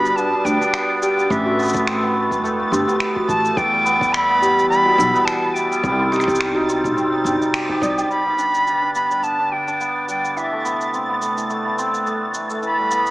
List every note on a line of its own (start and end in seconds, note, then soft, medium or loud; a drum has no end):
0.00 0.10 G1 loud
0.00 1.29 G3 medium
0.00 0.18 B3 medium
0.00 0.33 D4 loud
0.00 1.29 D4 medium
0.00 1.33 F#4 loud
0.00 0.45 G4 medium
0.00 1.03 G4 loud
0.00 1.29 B4 medium
0.00 0.18 B5 loud
0.00 8.07 A6 medium
0.05 1.00 G3 medium
0.05 cabasa soft
0.16 0.73 B3 medium
0.16 0.46 A5 loud
0.16 cabasa soft
0.33 0.61 D4 medium
0.45 0.55 D2 loud
0.45 3.59 G4 loud
0.45 1.02 G5 loud
0.45 cabasa medium
0.61 4.34 D4 loud
0.61 cabasa soft
0.73 1.17 B3 medium
0.73 finger snap medium
0.73 cabasa soft
1.02 1.36 G3 medium
1.02 1.18 G4 loud
1.02 1.33 G5 medium
1.02 cabasa medium
1.17 1.59 B3 medium
1.17 1.30 G4 medium
1.17 cabasa soft
1.30 2.43 A1 loud
1.30 2.30 E3 loud
1.30 3.55 A3 medium
1.30 3.55 B4 medium
1.30 1.88 E5 medium
1.30 kick loud
1.30 cabasa soft
1.46 2.15 A3 medium
1.46 1.53 F#4 loud
1.59 1.93 B3 loud
1.59 cabasa soft
1.62 cabasa soft
1.65 cabasa soft
1.67 cabasa medium
1.69 cabasa medium
1.73 kick loud
1.73 cabasa medium
1.76 cabasa soft
1.87 2.09 C4 medium
1.87 finger snap loud
1.87 cabasa soft
2.03 2.59 B3 loud
2.16 2.43 A3 medium
2.31 3.27 E3 medium
2.31 kick medium
2.31 cabasa soft
2.43 2.63 E1 loud
2.43 3.00 A3 medium
2.43 cabasa soft
2.60 2.78 B3 medium
2.72 2.82 G1 loud
2.72 2.94 C4 loud
2.72 2.86 G4 loud
2.72 cabasa medium
2.88 3.84 B3 loud
2.88 3.00 G4 medium
2.88 cabasa soft
3.00 3.44 A3 medium
3.00 finger snap loud
3.00 cabasa soft
3.16 3.23 F#4 loud
3.16 kick medium
3.28 3.48 A1 medium
3.28 3.55 E3 medium
3.28 3.58 A5 loud
3.28 kick loud
3.28 cabasa medium
3.44 7.88 A3 medium
3.44 cabasa soft
3.56 4.63 E2 loud
3.56 4.56 E3 loud
3.56 5.82 E3 medium
3.56 5.81 G3 medium
3.56 5.82 B3 medium
3.56 4.14 G5 loud
3.56 kick loud
3.56 cabasa soft
3.73 4.40 G3 medium
3.85 4.28 B3 loud
3.85 cabasa medium
4.01 kick loud
4.01 cabasa soft
4.13 4.97 E4 medium
4.13 4.69 B5 loud
4.13 finger snap loud
4.13 cabasa soft
4.29 4.85 B3 loud
4.41 4.69 G3 medium
4.41 4.56 G4 loud
4.41 cabasa medium
4.57 5.54 E3 medium
4.57 4.70 G4 medium
4.57 cabasa soft
4.69 5.26 G3 medium
4.69 5.27 B5 loud
4.69 cabasa soft
4.85 5.13 B3 medium
4.85 4.93 F#4 loud
4.98 5.09 B1 loud
4.98 6.18 E4 loud
4.98 cabasa medium
5.13 6.05 B3 loud
5.13 cabasa soft
5.25 5.70 G3 medium
5.25 5.55 A5 loud
5.25 finger snap loud
5.25 cabasa soft
5.54 5.89 E3 medium
5.54 6.39 G5 loud
5.54 cabasa medium
5.71 5.83 G3 medium
5.71 cabasa soft
5.83 6.97 C2 loud
5.83 8.08 C3 medium
5.83 6.82 G3 loud
5.83 8.08 G3 medium
5.83 8.08 D#4 medium
5.83 kick loud
5.83 cabasa soft
5.99 6.68 C4 medium
6.12 6.55 D#4 loud
6.12 6.27 G4 loud
6.12 finger snap soft
6.12 cabasa soft
6.16 finger snap soft
6.20 finger snap soft
6.20 cabasa soft
6.24 finger snap soft
6.24 kick loud
6.28 6.40 G4 medium
6.28 cabasa medium
6.35 cabasa medium
6.40 7.25 G4 medium
6.40 finger snap loud
6.40 cabasa soft
6.55 7.12 D#4 loud
6.55 6.62 F#4 loud
6.69 6.96 C4 medium
6.69 cabasa medium
6.84 8.10 G3 medium
6.84 kick medium
6.84 cabasa soft
6.96 7.16 G1 loud
6.96 8.32 C4 medium
6.96 cabasa soft
7.12 7.41 D#4 medium
7.24 7.35 G1 medium
7.24 7.53 G4 medium
7.24 cabasa medium
7.41 8.44 D#4 medium
7.41 cabasa soft
7.53 7.69 G4 medium
7.53 finger snap loud
7.53 cabasa soft
7.69 7.98 G4 loud
7.69 kick medium
7.81 8.01 C2 loud
7.81 7.97 D5 medium
7.81 8.44 D#5 loud
7.81 kick loud
7.81 cabasa medium
7.97 8.66 G4 loud
7.97 8.09 G5 medium
7.97 cabasa soft
8.09 10.34 G2 medium
8.09 10.34 D3 medium
8.09 9.09 G3 medium
8.09 12.59 B4 medium
8.09 8.91 B5 loud
8.09 13.11 A6 medium
8.09 cabasa soft
8.26 8.95 B3 medium
8.38 8.81 D4 medium
8.38 cabasa medium
8.54 cabasa soft
8.67 9.51 G4 medium
8.67 cabasa soft
8.82 9.38 D4 medium
8.95 9.22 B3 medium
8.95 9.25 B5 medium
8.95 cabasa medium
9.11 10.07 G3 medium
9.11 cabasa soft
9.23 9.80 B3 medium
9.23 9.54 A5 medium
9.23 cabasa soft
9.39 9.67 D4 medium
9.52 12.66 G4 medium
9.52 10.08 G5 medium
9.67 13.11 D4 medium
9.67 cabasa soft
9.81 10.23 B3 medium
9.81 cabasa soft
10.08 10.41 G3 medium
10.08 10.39 G5 medium
10.08 cabasa medium
10.24 10.64 B3 medium
10.24 cabasa soft
10.36 12.60 C3 medium
10.36 11.36 E3 medium
10.36 12.61 A3 medium
10.36 10.93 E5 medium
10.36 cabasa soft
10.52 11.21 A3 medium
10.65 11.00 B3 medium
10.65 cabasa medium
10.81 cabasa soft
10.94 11.15 C4 medium
10.94 cabasa soft
11.09 11.65 B3 medium
11.21 11.49 A3 medium
11.21 cabasa medium
11.37 12.33 E3 medium
11.37 cabasa soft
11.50 12.06 A3 medium
11.50 cabasa soft
11.65 11.84 B3 medium
11.78 12.00 C4 medium
11.78 cabasa medium
11.94 12.91 B3 medium
11.94 cabasa soft
12.06 12.50 A3 medium
12.06 cabasa soft
12.34 12.62 E3 medium
12.34 cabasa medium
12.50 13.11 A3 medium
12.50 cabasa soft
12.63 13.11 E2 medium
12.63 13.11 B2 medium
12.63 13.11 E3 medium
12.63 13.11 G3 medium
12.63 13.11 B5 medium
12.63 cabasa soft
12.79 13.11 G3 medium
12.91 13.11 B3 medium
12.91 cabasa medium
13.06 cabasa soft